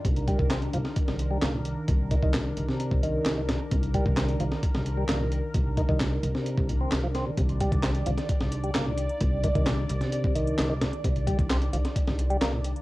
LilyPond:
<<
  \new Staff \with { instrumentName = "Analog synth pad" } { \time 4/4 \key c \minor \tempo 4 = 131 << { bes'1~ | bes'1~ | bes'1~ | bes'1 |
d''1~ | d''1~ | d''1 | } \\ { <ees d'>1~ | <ees d'>1~ | <ees d'>1~ | <ees d'>1~ |
<ees d'>1~ | <ees d'>1~ | <ees d'>1 | } >> }
  \new Staff \with { instrumentName = "Tonewheel organ" } { \clef bass \time 4/4 \key c \minor c16 r16 g16 r16 c'16 r16 f16 r4 g16 bes16 bes,16 r8 | bes,16 r16 ees16 ees16 bes,16 r8 c8. ees8. ees16 bes,16 r16 | c16 r16 g16 r16 c'16 r16 f16 r4 g16 bes16 bes,16 r8 | bes,16 r16 ees16 ees16 bes,16 r8 c8. bes,16 c'16 c16 f16 c'16 c16 |
c16 r16 g16 r16 c'16 r16 f16 r4 g16 bes16 bes,16 r8 | bes,16 r16 ees16 ees16 bes,16 r8 c8. ees8. ees16 bes,16 r16 | c16 r16 g16 r16 c'16 r16 f16 r4 g16 bes16 bes,16 r8 | }
  \new Staff \with { instrumentName = "Upright bass" } { \clef bass \time 4/4 \key c \minor c,8. c,8. c,16 r8 c,8. c,8. r16 | c,8. c,8. c,16 r8 c,8. c,8. r16 | c,8. c,8. c,16 r8 c,8. c,8. r16 | c,8. c,8. c,16 r8 c,8. c,8. r16 |
c,8. c,8. c,16 r8 c,8. c,8. r16 | c,8. c,8. c,16 r8 c,8. c,8. r16 | c,8. c,8. c,16 r8 c,8. c,8. r16 | }
  \new DrumStaff \with { instrumentName = "Drums" } \drummode { \time 4/4 <hh bd>16 hh16 <hh bd>16 bd16 <hc hh sn>16 hh16 hh16 sn16 <hh bd>16 sn16 hh8 <hc hh sn>8 hh8 | <hh bd>8 <hh bd>16 bd16 <hc hh sn>8 hh16 sn16 hh16 bd16 hh8 <hc hh sn>8 <hh sn>8 | <hh bd>16 hh16 <hh bd>16 bd16 <hc hh sn>16 hh16 hh16 sn16 <hh bd>16 sn16 hh8 <hc hh sn>8 hh8 | <hh bd>8 <hh bd>16 bd16 <hc hh sn>8 hh16 sn16 hh16 bd16 hh8 <hc hh sn>8 <hh sn>8 |
<hh bd>16 hh16 <hh bd>16 <hh bd>16 <hc hh sn>16 hh16 hh16 <hh sn>16 <hh bd>16 sn16 hh16 hh16 <hc hh sn>8 hh16 hh16 | <hh bd>8 <hh bd>16 <hh bd>16 <hc hh sn>8 hh16 <hh sn>16 hh16 bd16 hh16 hh16 <hc hh sn>8 <hh sn>16 hh16 | <hh bd>16 hh16 <hh bd>16 <hh bd>16 <hc hh sn>16 hh16 hh16 <hh sn>16 <hh bd>16 sn16 hh16 hh16 <hc hh sn>8 hh16 hh16 | }
>>